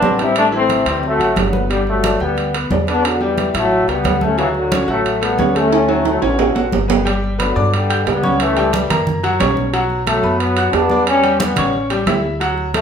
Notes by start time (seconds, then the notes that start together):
Already playing: B3 D4
0.02 A1 C4 C5, high conga, low timbale
0.18 G3 C4 E4 G4, high conga, high timbale
0.36 A3 D4, high conga, high timbale
0.52 E3 A3 E4, high conga
0.56 C4
0.69 high conga, high timbale, low timbale
0.86 D2 E3 G3 C4 C5, high conga, high timbale
1.03 F#3 A3, high conga
1.19 A1 F#4 F#5, high conga, high timbale
1.36 G1 D3 F#3, high conga, high timbale, low timbale
1.53 B3 B4, high conga
1.70 D3 G3 G4, high conga, high timbale
1.87 F#3 A3, high conga
2.04 D4 D5, high conga, high timbale, low timbale
2.20 D2 G3 B3 G4 G5
2.37 high conga, high timbale
2.54 B3 B4, high conga, high timbale
2.70 E2 D4 D5, high conga, low timbale
2.87 B3 D4 B4, high conga, high timbale
3.04 D3 F#3, high conga, high timbale
3.21 E3 G3 G4, high conga
3.38 high conga, high timbale, low timbale
3.54 A1 F#3 A3 E4 E5, high conga, high timbale
3.71 high conga
3.88 C#2 G3 B3 G4 G5, high conga, high timbale
4.04 D2, high conga, high timbale, low timbale
4.21 A3 C#4 A4, high conga
4.37 C#3 E3 F#3 F#4, high conga, high timbale
4.55 D3 F#3, high conga
4.71 C#4 C#5, high conga, high timbale, low timbale
4.88 A1 F#3 A3 F#4 F#5
5.05 high conga, high timbale
5.21 G3 A3 B3 A4, high conga, high timbale
5.38 D2 C#4 C#5, high conga, low timbale
5.55 A3 C#4 A4, high conga, high timbale
5.72 high conga, high timbale
5.88 F#3 F#4, high conga, high timbale
6.05 F#3 A3, high conga, high timbale
6.22 A1 B2 D3 C#4 C#5, high conga, high timbale
6.39 high conga, low timbale
6.55 A1 F#4 F#5, high conga, low timbale
6.72 G1, high conga, low timbale
6.88 B3 B4, high conga, low timbale
7.05 G3 G4 G5, high conga, high timbale
7.24 high conga
7.38 D3 F#3 B3 B4 B5, high conga, high timbale, low timbale
7.55 G2 D4 D5 D6, high conga
7.74 D3 G3, high conga, high timbale
7.89 G4 G5 G6, high conga, high timbale
8.06 C#2 G3 B3, high conga, high timbale, low timbale
8.23 C#4 C#5 C#6, high conga
8.40 E3 A3, high conga, high timbale
8.57 G3 G4 G5, high conga, high timbale
8.73 E3 G3, high conga, high timbale, low timbale
8.90 F#2 A#3 A#4 A#5, high conga, low conga, high timbale
9.07 high conga, low conga
9.23 F#3 F#4 F#5, high conga, high timbale
9.39 B1 C#4 C#5 C#6, high conga, high timbale, low timbale
9.57 high conga
9.73 F#3 F#4 F#5, high conga, high timbale
9.90 high conga
10.06 F#3 A3 A4 A5, high conga, high timbale, low timbale
10.23 F#2 B3 B4 B5, high conga
10.39 F#3 B3, high conga, high timbale
10.57 F#4 F#5 F#6, high conga, high timbale
10.72 E2 B3 D4, high conga, high timbale, low timbale
10.90 D4 D5 D6, high conga
11.07 G3 C#4, high conga, high timbale
11.24 G3 G4 G5, high conga, high timbale
11.40 G3 B3, high conga, high timbale, low timbale
11.56 A1 C#4 C#5 C#6, high conga, low conga, high timbale
11.73 high conga
11.90 G3 G4 G5, high conga, high timbale
12.06 D2 E4 E5 E6, high conga, high timbale, low timbale
12.40 F#3 F#4 F#5, high conga, high timbale
12.58 high conga
12.74 F#3 A3 A4 A5, high conga, high timbale, low timbale